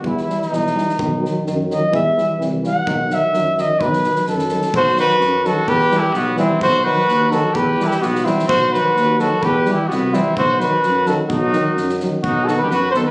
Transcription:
<<
  \new Staff \with { instrumentName = "Flugelhorn" } { \time 2/4 \tempo 4 = 128 \tuplet 3/2 { e'8 e'8 dis'8~ } dis'4~ | dis'4 r8 dis''8 | e''4 r8 fis''8~ | fis''8 e''4 dis''8 |
b'4 a'4 | c''8 b'4 a'8 | \tuplet 3/2 { b'4 g'8 } fis'8 e'8 | c''8 b'4 a'8 |
\tuplet 3/2 { b'4 g'8 } fis'8 e'8 | c''8 b'4 a'8 | \tuplet 3/2 { b'4 g'8 } fis'8 e'8 | c''8 b'4 a'16 r16 |
fis'4. r8 | fis'8 a'16 b'16 b'8 c''16 b'16 | }
  \new Staff \with { instrumentName = "Trumpet" } { \time 2/4 r2 | r2 | r2 | r2 |
r2 | fis'8 fis'4 fis'8 | \tuplet 3/2 { g'4 e'8 } b8 c'8 | fis'8 fis'4 fis'8 |
\tuplet 3/2 { g'4 e'8 } b8 c'8 | fis'8 fis'4 fis'8 | \tuplet 3/2 { g'4 e'8 } b8 c'8 | fis'8 fis'4 fis'16 r16 |
dis'4. r8 | dis'8 fis'16 g'16 fis'8 a'16 r16 | }
  \new Staff \with { instrumentName = "Euphonium" } { \clef bass \time 2/4 g8 g8 g8 g8 | fis8 fis8 fis8 fis8 | g8 g8 g8 g8 | fis8 fis8 fis8 fis8 |
fis8 fis8 fis8 fis8 | r8 fis8 r8 fis8 | r8 g8 r8 g8 | r8 fis8 r8 fis8 |
r8 g8 r8 g8 | r8 fis8 r8 fis8 | r8 g8 r8 g8 | r8 fis8 r8 fis8 |
r8 fis8 r8 fis8 | r8 b8 r8 b8 | }
  \new Staff \with { instrumentName = "Euphonium" } { \clef bass \time 2/4 e8 e8 e8 e8 | dis8 dis8 dis8 dis8 | e8 e8 e8 e8 | dis8 dis8 dis8 dis8 |
dis8 dis8 dis8 dis8 | r8 dis8 r8 dis8 | r8 e8 r8 e8 | r8 dis8 r8 dis8 |
r8 e8 r8 e8 | r8 dis8 r8 dis8 | r8 e8 r8 e8 | r8 dis8 r8 dis8 |
r8 dis8 r8 dis8 | r8 dis8 r8 dis8 | }
  \new Staff \with { instrumentName = "Tuba" } { \clef bass \time 2/4 e,4 b,,4 | b,,4 fis,4 | e,4 c,4 | b,,4 fis,4 |
b,,4 fis,4 | b,,4 fis,4 | e,4 b,,4 | b,,4 dis,4 |
e,4 b,,4 | b,,4 dis,4 | e,4 c,4 | b,,4 fis,4 |
b,,4 fis,4 | b,,4 fis,4 | }
  \new DrumStaff \with { instrumentName = "Drums" } \drummode { \time 2/4 bd16 sn16 sn16 sn16 sn16 sn16 sn16 sn16 | bd8 sn8 sn8 sn8 | bd8 sn8 sn8 sn8 | bd8 sn8 sn8 sn8 |
bd16 sn16 sn16 sn16 sn16 sn16 sn16 sn16 | bd8 sn8 sn8 sn8 | bd8 sn8 sn8 sn8 | bd4 sn8 sn8 |
bd8 sn16 sn16 sn16 sn16 sn16 sn16 | bd8 sn8 sn8 sn8 | bd8 sn8 sn8 sn8 | bd8 sn8 sn8 sn8 |
bd8 sn8 sn16 sn16 sn8 | bd8 sn8 sn8 sn8 | }
>>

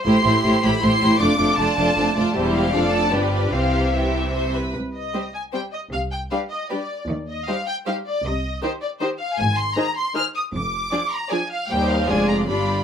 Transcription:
<<
  \new Staff \with { instrumentName = "Violin section" } { \time 3/4 \key c \major \tempo 4 = 155 c'''4. b''8 c'''4 | d'''4 a''2 | r8 f''4 a''8 d''4 | f''4 e''4. r8 |
\key c \minor r8 ees''4 aes''8 g''8 ees''8 | f''8 g''8 f''8 ees''8 d''4 | r8 ees''8 f''8 g''8 f''8 d''8 | ees''4 c''8 d''8 c''8 f''8 |
aes''8 c'''8 bes''8 c'''8 f'''8 ees'''8 | d'''4. bes''8 aes''8 f''8 | g''8 f''8 aes''8 bes''8 b''4 | }
  \new Staff \with { instrumentName = "Violin section" } { \time 3/4 \key c \major <g' c''>8 <g' c''>8 <g' c''>8 <g' c''>8 <g' c''>8 <g' c''>8 | <f' d''>8 <f' d''>8 <f' d''>8 <f' d''>8 <f' d''>8 <f' d''>8 | <g' c''>4 <a' d''>4 <g' b'>4 | <g' c''>4 g'4 c''8 b'8 |
\key c \minor r4 <g' c''>4 <g' c''>4 | r4 <g' b'>4 <g' b'>4 | r4 <g' c''>4 <g' c''>4 | r4 <g' c''>4 <g' c''>4 |
r4 <aes' c''>4 <aes' c''>4 | r4 <aes' d''>4 <aes' d''>4 | <g' c''>4 <f' d''>4 <f' d''>4 | }
  \new Staff \with { instrumentName = "Viola section" } { \time 3/4 \key c \major <a e'>8 <a e'>8 <a e'>8 <a e'>8 <a e'>8 <a e'>8 | <a d'>8 <a d'>8 <a d'>8 <a d'>8 <a d'>8 <a d'>8 | <g e'>4 <f d'>4 <f d'>4 | <e c'>4 <e c'>4. r8 |
\key c \minor r4 <g c'>4 <g c'>4 | r4 <g d'>4 <g d'>4 | r4 <g ees'>4 <g ees'>4 | r4 <ees ees'>4 <ees ees'>4 |
r4 <ees ees'>4 <ees ees'>4 | r4 <f d'>4 <f d'>4 | <g ees'>4 <aes d'>4 <g d'>4 | }
  \new Staff \with { instrumentName = "Cello section" } { \clef bass \time 3/4 \key c \major a,8 a,8 a,8 a,8 a,8 a,8 | f,8 f,8 f,8 f,8 f,8 f,8 | e,4 f,4 g,4 | c2~ c8 r8 |
\key c \minor c4 r2 | c4 r2 | ees4 r2 | c4 r2 |
aes,4 r2 | f,4 r2 | ees,4 f,4 g,4 | }
  \new Staff \with { instrumentName = "Double bass section" } { \clef bass \time 3/4 \key c \major a,,8 a,,8 a,,8 a,,8 a,,8 a,,8 | f,,8 f,,8 f,,8 f,,8 f,,8 f,,8 | e,,4 f,,4 g,,4 | c,2~ c,8 r8 |
\key c \minor c,4 r2 | c,4 r2 | ees,4 r2 | c,4 r2 |
aes,,4 r2 | f,,4 r2 | ees,4 f,,4 g,,4 | }
>>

